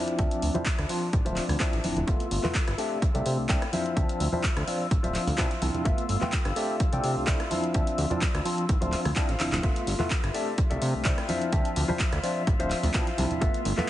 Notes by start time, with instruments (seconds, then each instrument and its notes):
Already playing: tine electric piano F3 C4 D4 E4, string section D4 D5, clean electric guitar F4 C5 E5
0.08 closed hi-hat
0.18 analog synth bass D2, tine electric piano F3 C4 D4 E5, kick, closed hi-hat
0.31 closed hi-hat
0.41 analog synth bass D2, open hi-hat, tambourine
0.54 tine electric piano F3 C4 D4 E4, clean electric guitar F4 C5 E5, closed hi-hat, tambourine, high conga, low conga
0.66 kick, clap, closed hi-hat
0.79 analog synth bass D2, cross-stick, closed hi-hat
0.89 tine electric piano F3 C4 D4 F4, open hi-hat
1.02 tambourine
1.13 analog synth bass A1, kick, closed hi-hat
1.25 analog synth bass D1, tine electric piano F3 C4 D4 F4, clean electric guitar F4 C5 E5, closed hi-hat, high conga
1.36 clap, open hi-hat
1.48 analog synth bass D2, cross-stick, open hi-hat, tambourine, low conga
1.60 tine electric piano F3 C4 D4 E4, clean electric guitar F4 C5 E5, kick, clap, closed hi-hat
1.73 analog synth bass A1, closed hi-hat
1.84 analog synth bass D1, tine electric piano F3 C4 D4 E4, open hi-hat, tambourine, high conga
1.96 analog synth bass D1, closed hi-hat, tambourine, low conga
2.07 analog synth bass G1, tine electric piano A3 B3 F4 E5, clean electric guitar F4 A4 B4 E5, string section F4 E6, kick, closed hi-hat
2.20 closed hi-hat
2.31 analog synth bass G1, open hi-hat
2.43 tine electric piano A3 B3 E4 F4, clean electric guitar F4 A4 B4 E5, clap, tambourine, high conga, low conga
2.55 kick, clap, closed hi-hat
2.68 analog synth bass G1, cross-stick, closed hi-hat
2.78 tine electric piano A3 C4 D4 G4, clean electric guitar A4 D5 E5, open hi-hat, tambourine
2.90 tambourine
3.02 analog synth bass C2, kick, closed hi-hat
3.14 analog synth bass C2, tine electric piano A3 C4 D4 G4, clean electric guitar A4 D5 E5, closed hi-hat, high conga
3.26 analog synth bass C3, open hi-hat, tambourine
3.38 analog synth bass C2, tambourine
3.49 analog synth bass C2, tine electric piano A3 C4 D4 E4, clean electric guitar A4 D5 G5, kick, clap, closed hi-hat
3.62 cross-stick, closed hi-hat
3.72 tine electric piano F3 C4 D4 E4, clean electric guitar F4 C5 E5, open hi-hat, tambourine, high conga
3.85 closed hi-hat, tambourine
3.96 analog synth bass D2, tine electric piano F3 C4 D4 E5, kick, closed hi-hat
4.09 closed hi-hat
4.20 analog synth bass D2, open hi-hat, tambourine
4.32 tine electric piano F3 C4 D4 E4, clean electric guitar F4 C5 E5, tambourine, high conga, low conga
4.44 kick, clap, closed hi-hat
4.57 analog synth bass D2, cross-stick, closed hi-hat
4.67 tine electric piano F3 C4 D4 F4, open hi-hat, tambourine
4.80 tambourine
4.91 analog synth bass A1, kick, closed hi-hat
5.03 analog synth bass D1, tine electric piano F3 C4 D4 F4, clean electric guitar F4 C5 E5, closed hi-hat, high conga
5.14 clap, open hi-hat, tambourine
5.27 analog synth bass D2, open hi-hat, tambourine, low conga
5.38 analog synth bass B2, tine electric piano F3 C4 D4 E4, clean electric guitar F4 C5 E5, kick, clap, closed hi-hat, tambourine
5.51 closed hi-hat
5.61 analog synth bass C2, tine electric piano F3 C4 D4 E4, open hi-hat, tambourine, high conga
5.74 closed hi-hat, tambourine, low conga
5.85 analog synth bass G1, tine electric piano A3 B3 F4 E5, clean electric guitar F4 A4 B4 E5, kick, closed hi-hat
5.98 closed hi-hat
6.09 analog synth bass G1, open hi-hat, tambourine
6.21 tine electric piano A3 B3 E4 F4, clean electric guitar F4 A4 B4 G5, clap, tambourine, high conga, low conga
6.32 kick, clap, closed hi-hat
6.45 analog synth bass G1, cross-stick, closed hi-hat
6.56 tine electric piano A3 C4 D4 G4, clean electric guitar A4 D5 E5, open hi-hat
6.69 tambourine
6.80 analog synth bass C2, kick, closed hi-hat
6.92 analog synth bass C2, tine electric piano A3 C4 D4 G4, clean electric guitar A4 D5 G5, closed hi-hat, high conga
7.04 analog synth bass C3, open hi-hat, tambourine
7.17 analog synth bass C2, tambourine
7.27 analog synth bass C2, tine electric piano A3 C4 D4 E4, clean electric guitar A4 D5 E5, kick, clap, closed hi-hat
7.40 cross-stick, closed hi-hat
7.50 tine electric piano F3 C4 D4 E4, clean electric guitar F4 C5 E5, open hi-hat, tambourine, high conga
7.64 closed hi-hat, tambourine
7.74 analog synth bass D2, tine electric piano F3 C4 D4 E5, kick, closed hi-hat
7.87 closed hi-hat
7.98 analog synth bass D2, open hi-hat, tambourine
8.10 tine electric piano F3 C4 D4 E4, clean electric guitar F4 C5 D5, closed hi-hat, tambourine, high conga, low conga
8.21 kick, clap, closed hi-hat, tambourine
8.34 analog synth bass D2, cross-stick, closed hi-hat
8.45 tine electric piano F3 C4 D4 F4, open hi-hat, tambourine
8.58 closed hi-hat, tambourine
8.69 analog synth bass A1, kick, closed hi-hat
8.81 analog synth bass D1, tine electric piano F3 C4 D4 F4, clean electric guitar F4 C5 E5, closed hi-hat, high conga
8.92 clap, open hi-hat, tambourine
9.05 analog synth bass D2, cross-stick, open hi-hat, tambourine, low conga
9.16 tine electric piano F3 C4 D4 E4, clean electric guitar F4 C5 F5 A5, kick, clap, closed hi-hat
9.29 analog synth bass A1, clean electric guitar F5, closed hi-hat
9.39 analog synth bass D1, tine electric piano F3 C4 D4 E4, clap, open hi-hat, tambourine, high conga
9.52 analog synth bass D1, clap, closed hi-hat, tambourine, low conga
9.63 analog synth bass G1, tine electric piano A3 B3 F4 E5, clean electric guitar F4 A4 B4 E5, string section F4 E5, kick, closed hi-hat, tambourine
9.76 closed hi-hat
9.87 analog synth bass G1, open hi-hat, tambourine
9.99 tine electric piano A3 B3 E4 F4, clean electric guitar F4 A4 B4 E5, clap, tambourine, high conga, low conga
10.10 kick, clap, closed hi-hat
10.23 analog synth bass G1, cross-stick, closed hi-hat
10.34 tine electric piano A3 C4 D4 G4, clean electric guitar A4 D5 E5, open hi-hat, tambourine
10.47 tambourine
10.58 analog synth bass C2, kick, closed hi-hat
10.70 analog synth bass C2, tine electric piano A3 C4 D4 G4, clean electric guitar A4 D5 E5, closed hi-hat, high conga
10.82 analog synth bass C3, open hi-hat, tambourine
10.95 analog synth bass C2, tambourine
11.05 analog synth bass C2, tine electric piano A3 C4 D4 E4, clean electric guitar A4 D5 G5, kick, clap, closed hi-hat
11.18 cross-stick, closed hi-hat
11.28 tine electric piano F3 C4 D4 E4, clean electric guitar F4 C5 E5, open hi-hat, tambourine, high conga
11.42 closed hi-hat, tambourine
11.52 analog synth bass D2, tine electric piano F3 C4 D4 E5, kick, closed hi-hat
11.65 closed hi-hat
11.76 analog synth bass D2, open hi-hat, tambourine
11.88 tine electric piano F3 C4 D4 E4, clean electric guitar F4 C5 E5, tambourine, high conga, low conga
11.99 kick, clap, closed hi-hat, tambourine
12.13 analog synth bass D2, cross-stick, closed hi-hat
12.23 tine electric piano F3 C4 D4 F4, open hi-hat, tambourine
12.36 tambourine
12.47 analog synth bass A1, kick, closed hi-hat
12.59 analog synth bass D1, tine electric piano F3 C4 D4 F4, clean electric guitar F4 C5 E5, closed hi-hat, high conga
12.70 clap, open hi-hat, tambourine
12.83 analog synth bass D2, open hi-hat, tambourine, low conga
12.94 analog synth bass B2, tine electric piano F3 C4 D4 E4, clean electric guitar F4 C5 F5, kick, clap, closed hi-hat
13.07 closed hi-hat
13.17 analog synth bass C2, tine electric piano F3 C4 D4 E4, open hi-hat, tambourine, high conga
13.31 closed hi-hat, tambourine, low conga
13.41 analog synth bass G1, tine electric piano A3 B3 F4 E5, clean electric guitar F4 A4 B4 E5, kick, closed hi-hat
13.54 closed hi-hat
13.65 analog synth bass G1, open hi-hat, tambourine
13.77 tine electric piano A3 B3 E4 F4, clean electric guitar F4 A4 B4 E5, clap, tambourine, high conga, low conga